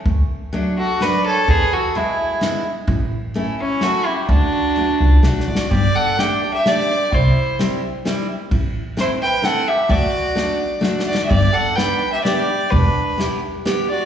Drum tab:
RD |x-----x-----x--x--|x-----x-----x-----|x-----x-----x--x--|x-----x-----------|
SD |------------o-----|------------o-----|------------o-----|------------o-o-o-|
BD |o-----------------|o-----------------|o-----------------|o-----------------|

RD |x-----x-----x-----|x-----x-----x-----|x-----x-----x-----|x-----x-----------|
SD |------o-----o-----|------o-----o-----|------o-----o-----|------o-----o-o-o-|
BD |o-----------------|o-----------------|o-----------------|o-----------------|

RD |x-----x-----x-----|x-----x-----x-----|
SD |------o-----o-----|------o-----o-----|
BD |o-----------------|o-----------------|